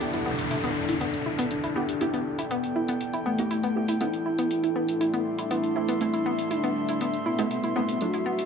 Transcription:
0.00 3.97 E3 medium
0.00 1.73 B3 medium
0.00 1.99 B3 medium
0.00 1.41 D4 loud
0.00 5.58 E4 medium
0.00 1.73 E4 medium
0.00 1.73 G4 medium
0.00 3.97 G4 medium
0.00 4.92 A4 medium
0.00 5.61 D5 medium
0.00 closed hi-hat medium
0.00 downlifter medium
0.14 0.24 E4 medium
0.14 closed hi-hat soft
0.26 0.33 B3 medium
0.39 closed hi-hat medium
0.51 0.61 E4 medium
0.51 closed hi-hat medium
0.64 0.70 B3 loud
0.64 closed hi-hat soft
0.89 0.99 E4 medium
0.89 closed hi-hat medium
1.01 1.08 B3 medium
1.01 closed hi-hat medium
1.14 closed hi-hat soft
1.26 1.36 E4 medium
1.39 1.45 B3 loud
1.39 closed hi-hat medium
1.47 4.94 G5 medium
1.51 2.41 D4 loud
1.51 closed hi-hat medium
1.64 1.74 E4 medium
1.64 closed hi-hat soft
1.76 1.83 B3 loud
1.76 1.98 B3 medium
1.76 1.98 E4 medium
1.76 1.98 G4 medium
1.89 closed hi-hat medium
2.01 8.45 A3 medium
2.01 3.36 B3 medium
2.01 3.36 E4 medium
2.01 2.11 E4 medium
2.01 3.36 G4 loud
2.01 closed hi-hat medium
2.14 2.20 B3 medium
2.14 closed hi-hat soft
2.39 2.49 E4 medium
2.39 closed hi-hat medium
2.51 2.58 B3 loud
2.51 3.16 B3 loud
2.51 closed hi-hat medium
2.64 closed hi-hat soft
2.76 2.86 E4 medium
2.88 2.95 B3 loud
2.88 closed hi-hat medium
3.01 closed hi-hat soft
3.14 3.24 E4 medium
3.14 closed hi-hat soft
3.26 4.02 A3 loud
3.26 3.33 B3 loud
3.38 3.73 B3 loud
3.38 3.73 E4 medium
3.38 3.73 G4 loud
3.38 closed hi-hat medium
3.51 3.61 E4 medium
3.51 closed hi-hat medium
3.63 3.70 B3 loud
3.63 closed hi-hat soft
3.76 3.98 B3 medium
3.76 3.98 E4 medium
3.76 3.98 G4 medium
3.88 3.99 E4 medium
3.88 closed hi-hat medium
4.01 5.73 A3 medium
4.01 8.01 A3 medium
4.01 4.08 B3 loud
4.01 5.73 C4 medium
4.01 5.73 E4 medium
4.01 5.41 E4 loud
4.01 5.99 E4 medium
4.01 7.97 A4 medium
4.01 closed hi-hat soft
4.13 8.45 D4 medium
4.13 closed hi-hat soft
4.26 4.36 E4 medium
4.39 4.45 B3 loud
4.39 closed hi-hat medium
4.51 8.01 G3 medium
4.51 closed hi-hat medium
4.64 4.74 E4 medium
4.64 closed hi-hat soft
4.76 4.83 B3 loud
4.88 8.45 E5 medium
4.88 8.45 C6 medium
4.88 closed hi-hat medium
5.01 5.11 E4 medium
5.01 closed hi-hat soft
5.14 5.20 B3 loud
5.14 closed hi-hat soft
5.39 5.49 E4 medium
5.39 closed hi-hat medium
5.51 5.58 B3 loud
5.51 6.52 E4 loud
5.51 closed hi-hat medium
5.64 closed hi-hat soft
5.76 5.98 A3 medium
5.76 5.98 C4 medium
5.76 5.86 E4 medium
5.76 5.98 E4 medium
5.89 5.95 B3 medium
5.89 closed hi-hat medium
6.01 7.36 A3 medium
6.01 7.36 C4 medium
6.01 7.36 E4 loud
6.01 8.45 F#4 medium
6.01 closed hi-hat soft
6.14 6.24 E4 medium
6.14 closed hi-hat soft
6.26 6.33 B3 loud
6.39 closed hi-hat medium
6.51 7.16 D4 loud
6.51 6.61 E4 medium
6.51 closed hi-hat soft
6.64 6.70 B3 loud
6.64 closed hi-hat soft
6.89 6.99 E4 medium
6.89 closed hi-hat medium
7.01 7.08 B3 medium
7.01 closed hi-hat soft
7.14 closed hi-hat soft
7.26 8.02 B3 loud
7.26 7.36 E4 medium
7.39 7.73 C3 medium
7.39 7.73 A3 loud
7.39 7.45 B3 loud
7.39 7.73 E4 loud
7.39 closed hi-hat medium
7.51 closed hi-hat soft
7.64 7.74 E4 medium
7.64 closed hi-hat soft
7.76 7.98 A3 medium
7.76 7.83 B3 loud
7.76 7.98 C4 medium
7.76 7.98 E4 medium
7.89 closed hi-hat medium
8.01 8.45 D3 medium
8.01 8.45 F#3 medium
8.01 8.45 A3 medium
8.01 8.45 D4 medium
8.01 8.45 E4 medium
8.01 8.45 F#4 loud
8.01 closed hi-hat soft
8.14 8.24 E4 medium
8.14 closed hi-hat soft
8.26 8.33 B3 medium
8.39 8.45 A4 medium
8.39 closed hi-hat medium

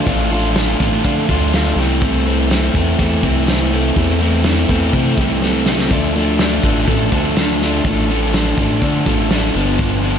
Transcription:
0.06 0.76 A1 medium
0.06 0.30 F3 medium
0.06 0.31 A3 medium
0.06 0.31 D4 medium
0.06 0.31 F4 medium
0.06 kick loud
0.06 open hi-hat soft
0.31 0.54 F3 medium
0.31 0.56 A3 medium
0.31 0.56 D4 medium
0.31 0.56 F4 medium
0.56 0.78 F3 medium
0.56 0.79 A3 medium
0.56 0.80 D4 medium
0.56 0.80 F4 medium
0.56 snare loud
0.56 open hi-hat soft
0.80 1.02 A1 medium
0.80 1.03 F3 medium
0.80 1.04 A3 medium
0.80 1.04 D4 medium
0.80 1.05 F4 medium
0.80 kick medium
1.04 1.27 D3 medium
1.04 1.28 F3 medium
1.04 1.29 A3 medium
1.04 1.29 D4 medium
1.04 1.30 F4 medium
1.04 kick medium
1.04 open hi-hat soft
1.28 1.73 D2 medium
1.28 1.51 F3 medium
1.28 1.53 A3 medium
1.28 1.53 D4 medium
1.28 1.53 F4 medium
1.28 kick medium
1.53 1.76 F3 medium
1.53 1.78 A3 medium
1.53 1.77 D4 medium
1.53 1.76 F4 medium
1.53 snare medium
1.53 open hi-hat soft
1.66 snare soft
1.76 2.70 C2 loud
1.76 2.02 E3 medium
1.76 2.03 A3 medium
1.76 2.03 C4 medium
1.76 snare soft
2.02 2.26 E3 medium
2.02 2.26 A3 medium
2.02 2.27 C4 loud
2.02 kick loud
2.02 open hi-hat soft
2.26 2.50 E3 medium
2.26 2.51 A3 medium
2.26 2.51 C4 medium
2.50 2.75 E3 medium
2.50 2.76 A3 medium
2.50 2.76 C4 medium
2.50 snare loud
2.50 open hi-hat medium
2.74 2.96 E2 medium
2.74 2.98 E3 medium
2.74 2.99 A3 medium
2.74 2.99 C4 medium
2.74 kick medium
2.99 3.21 E2 medium
2.99 3.22 E3 medium
2.99 3.24 A3 medium
2.99 3.23 C4 medium
2.99 kick medium
2.99 open hi-hat soft
3.22 3.92 C2 medium
3.22 3.46 E3 medium
3.22 3.48 A3 medium
3.22 3.48 C4 medium
3.22 kick medium
3.47 3.72 E3 medium
3.47 3.73 A3 medium
3.47 3.73 C4 medium
3.47 snare loud
3.47 open hi-hat soft
3.73 3.96 E3 medium
3.73 3.97 A3 medium
3.73 3.97 C4 medium
3.96 4.65 E2 loud
3.96 4.20 E3 medium
3.96 4.21 A3 loud
3.96 4.21 C4 medium
3.96 kick loud
3.96 open hi-hat soft
4.21 4.45 E3 medium
4.21 4.47 A3 medium
4.21 4.46 C4 medium
4.44 4.69 E3 medium
4.44 4.70 A3 medium
4.44 4.70 C4 medium
4.44 snare loud
4.44 open hi-hat soft
4.69 4.91 E2 medium
4.69 4.93 E3 medium
4.69 4.94 A3 medium
4.69 4.94 C4 medium
4.69 kick medium
4.93 5.15 C3 medium
4.93 5.17 E3 medium
4.93 5.19 A3 medium
4.93 5.18 C4 medium
4.93 kick medium
4.93 open hi-hat soft
5.17 5.92 C2 medium
5.17 5.42 E3 medium
5.17 5.43 A3 medium
5.17 5.42 C4 medium
5.17 kick medium
5.42 5.64 E3 medium
5.42 5.67 A3 medium
5.42 5.66 C4 medium
5.42 snare soft
5.66 5.89 E3 medium
5.66 5.91 A3 medium
5.66 5.90 C4 medium
5.66 snare medium
5.78 snare medium
5.91 6.60 D2 medium
5.91 6.14 F3 medium
5.91 6.15 A3 medium
5.91 6.16 D4 medium
5.91 kick loud
5.91 open hi-hat soft
6.15 6.38 F3 medium
6.15 6.39 A3 medium
6.15 6.40 D4 medium
6.39 6.63 F3 medium
6.39 6.63 A3 medium
6.39 6.64 D4 medium
6.39 snare loud
6.39 open hi-hat soft
6.63 6.86 A1 medium
6.63 6.87 F3 medium
6.63 6.87 A3 medium
6.63 6.88 D4 medium
6.63 kick medium
6.87 7.10 A1 medium
6.87 7.12 F3 medium
6.87 7.12 A3 medium
6.87 7.14 D4 medium
6.87 kick medium
6.87 open hi-hat soft
7.12 7.81 D2 medium
7.12 7.37 F3 medium
7.12 7.37 A3 medium
7.12 7.38 D4 medium
7.12 kick medium
7.37 7.62 F3 medium
7.37 7.62 A3 medium
7.37 7.64 D4 medium
7.37 snare medium
7.37 open hi-hat soft
7.62 7.86 F3 medium
7.62 7.86 A3 medium
7.62 7.87 D4 medium
7.62 snare soft
7.84 8.54 A1 loud
7.84 8.10 F3 medium
7.84 8.10 A3 medium
7.84 8.11 D4 medium
7.84 kick loud
7.84 open hi-hat soft
8.10 8.33 F3 medium
8.10 8.33 A3 medium
8.10 8.34 D4 medium
8.33 8.56 F3 medium
8.33 8.57 A3 medium
8.33 8.59 D4 medium
8.33 snare loud
8.33 open hi-hat medium
8.57 8.80 A1 medium
8.57 8.82 F3 medium
8.57 8.82 A3 medium
8.57 8.83 D4 medium
8.57 kick medium
8.82 9.04 D3 medium
8.82 9.05 F3 medium
8.82 9.05 A3 medium
8.82 9.07 D4 loud
8.82 kick medium
8.82 open hi-hat soft
9.06 9.51 A1 medium
9.06 9.31 F3 medium
9.06 9.31 A3 medium
9.06 9.32 D4 medium
9.06 kick medium
9.30 9.56 F3 medium
9.30 9.55 A3 medium
9.30 9.57 D4 medium
9.30 snare loud
9.30 open hi-hat soft
9.44 snare soft
9.55 10.19 G1 loud
9.55 9.80 F3 medium
9.55 9.81 B3 medium
9.55 9.81 D4 medium
9.79 10.03 F3 medium
9.79 10.04 B3 medium
9.79 10.05 D4 medium
9.79 kick loud
9.79 open hi-hat soft
10.04 10.19 F3 medium
10.04 10.19 B3 medium
10.04 10.19 D4 medium

